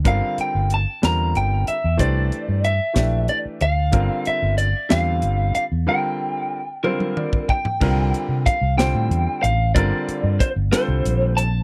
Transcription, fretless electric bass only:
X:1
M:6/8
L:1/16
Q:3/8=62
K:Gdor
V:1 name="Fretless electric bass" clef=bass
G,,, z2 G,,,2 z E,,2 G,,,2 z E,, | C,,2 z G,,2 z B,,,2 z2 D,,2 | G,,, z2 G,,,2 z E,,2 G,,,2 z E,, | z12 |
C,,2 z C, z C,,2 A,, E,, z A,,,2 | G,,, z2 G,, z G,,, z C,, B,,,4 |]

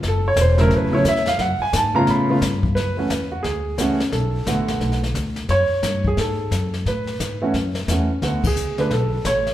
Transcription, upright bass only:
X:1
M:4/4
L:1/8
Q:"Swing" 1/4=176
K:F#m
V:1 name="Upright bass" clef=bass
F,,,2 E,,,2 A,,,2 E,,2 | F,, z G,,2 A,,2 =G,,2 | F,,2 E,,2 D,,2 C,,2 | B,,,2 A,,,2 B,,,2 D,,2 |
F,, z =G,,2 ^G,,2 F,,2 | A,,2 G,,2 F,,2 E,,2 | D,,2 C,,2 B,,,2 A,,,2 |]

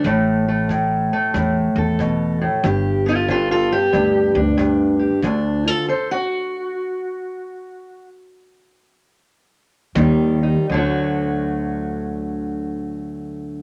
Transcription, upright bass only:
X:1
M:4/4
L:1/8
Q:"Swing" 1/4=92
K:Ador
V:1 name="Upright bass" clef=bass
A,,,4 E,, E,,3 | G,,,4 D,, D,,3 | D,,2 z6 | z6 _E,,2 |
D,,8 |]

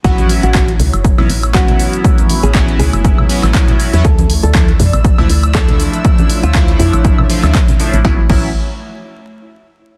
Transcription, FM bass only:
X:1
M:4/4
L:1/16
Q:"Swing 16ths" 1/4=120
K:A
V:1 name="FM bass" clef=bass
A,,,3 A,,, A,,,2 C,, F,,,2 A,,, A,,,4- A,,, z | z3 A,,, A,,,2 C,, F,,,2 z2 A,,, z3 E,, | D,,3 D,, D,,2 =F,, A,,,2 D,, D,,4- D,, z | z3 D,, D,,2 =F,, A,,,2 z2 D,, z3 A,,, |
A,,, z A,,,2 z12 |]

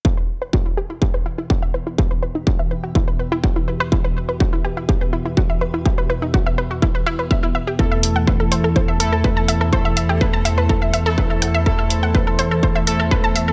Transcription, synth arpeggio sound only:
X:1
M:4/4
L:1/16
Q:1/4=124
K:Em
V:1 name="Synth arpeggio sound"
E B z B F E G E G B E E F e B E | G B B ^D F e B F E B B E F E B B | E B z B F E G E G B E E F e B E | G B B ^D F e B F E B E B e E e G |
A e z f B A c A c e A A B a e A | c e e G B a e B A e e A B A f e | A e z f B A c A c e A A B a e A |]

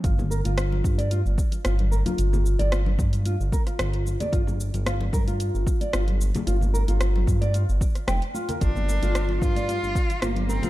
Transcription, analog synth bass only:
X:1
M:4/4
L:1/16
Q:"Swing 16ths" 1/4=112
K:Gm
V:1 name="Analog synth bass" clef=bass
G,,,3 G,,,3 G,,3 G,,, z2 G,,,3 z | G,,,3 G,,,3 G,,3 G,,, z2 G,,,3 z | G,,,3 G,,,3 G,,3 G,,, z2 G,,,3 z | G,,,3 G,,,3 G,,3 G,,, z2 F,,, z3 |
G,,,3 G,,,3 G,,3 G,,, z2 G,,,3 z |]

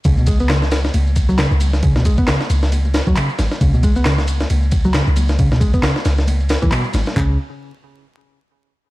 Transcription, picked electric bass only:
X:1
M:4/4
L:1/16
Q:"Swing 16ths" 1/4=135
K:Bdor
V:1 name="Picked electric bass" clef=bass
C, B,, G, B, C, z6 F, C, z3 | C, B,, G, B, C, z6 F, C, z3 | C, B,, G, B, C, z6 F, C, z3 | C, B,, G, B, C, z6 E, B,, z3 |
C,2 z12 z2 |]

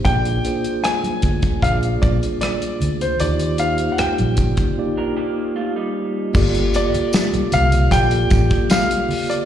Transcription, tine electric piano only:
X:1
M:4/4
L:1/8
Q:1/4=76
K:Gm
V:1 name="Tine electric piano"
[B,DF_Ad] [B,DFAc]3 [B,DFAd]4 | [B,EFGd] [B,EFGc]3 [B,EFGd]4 | [B,FGAd]4 [B,FGAd]4 |]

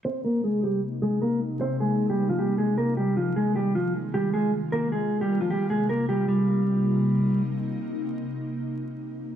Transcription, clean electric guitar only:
X:1
M:4/4
L:1/16
Q:1/4=154
K:Cm
V:1 name="Clean electric guitar"
[Cc]2 [B,B]2 [A,A]2 [G,G]2 z2 [A,A]2 [B,B]2 z2 | [Cc]2 [A,A]3 [G,G]2 [F,F] [G,G]2 [A,A]2 [B,B]2 [G,G]2 | [F,F]2 [A,A]2 [G,G]2 [F,F]2 z2 [G,G]2 [A,A]2 z2 | [B,B]2 [A,A]3 [G,G]2 [F,F] [G,G]2 [A,A]2 [B,B]2 [G,G]2 |
G,12 z4 | z16 |]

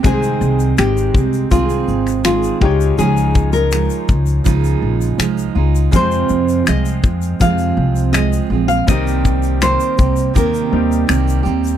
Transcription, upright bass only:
X:1
M:4/4
L:1/16
Q:1/4=82
K:Dblyd
V:1 name="Upright bass" clef=bass
C,,2 C,,2 A,,,2 C,,2 C,,2 A,,,4 D,,2 | D,,4- D,, z D,,2 D,,2 B,,,2 C,,2 D,,2 | F,,2 F,,2 C,,2 F,,2 F,,2 C,,4 B,,,2 | C,,4- C,, z C,,2 E,,2 E,,2 C,,2 E,,2 |]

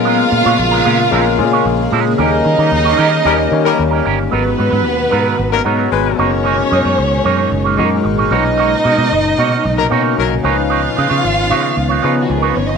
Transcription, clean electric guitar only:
X:1
M:4/4
L:1/16
Q:1/4=113
K:G#dor
V:1 name="Clean electric guitar"
[G,CEA] z2 [G,CEc] z [G,CEA] [G,CEA] z [G,CEA]2 z [G,CEc] z2 [G,CEA]2 | [A,C=GA] z2 [A,CGA] z [A,CGc] [A,CGA] z [A,CGA] z2 [A,CGA] z [A,CGA] [A,CGA] z | [F,B,DA] z [F,B,DB] [F,B,DB] z2 [F,B,DA] [F,B,DA] z2 [F,B,DA] [F,B,DA] z2 [A,DGc] z | [A,DGc] z [A,DGd] [A,DGc] z2 [A,DGc] [A,DGc] z [A,DGc] [A,DGc] z2 [A,DGc] [A,DFc] z |
[A,DFc] z [A,DFd] [A,DFd] z2 [A,DFc] [A,DFc] z2 [A,DFc] [A,DFc] z2 [B,DEc] z | [B,DEc] z [B,DEd] [B,DEc] z2 [B,DEc] [B,DEc] z [B,DEc] [B,DEc] z2 [B,DEc] z2 |]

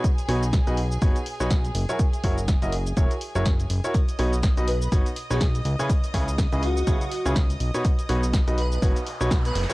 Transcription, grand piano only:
X:1
M:4/4
L:1/16
Q:"Swing 16ths" 1/4=123
K:B
V:1 name="Grand piano"
z2 [B,,DFBc] z2 [B,,DFBd] z2 [B,,DFBc] z2 [B,,DFBc] z3 [F,EFAc] | z2 [F,EFAc] z2 [F,EFAd] z2 [F,EFAc] z2 [F,EFAc] z3 [EFAc] | z2 [B,,DFBc] z2 [B,,DFBd] z2 [B,,DFBc] z2 [B,,DFBc] z3 [C,EGBc] | z2 [C,EGBc] z2 [C,EGBd] z2 [C,EGBc] z2 [C,EGBc] z3 [B,,DFBc] |
z2 [B,,DFBc] z2 [B,,DFBd] z2 [B,,DFBc] z2 [B,,DFBc] z3 [F,EFAc] |]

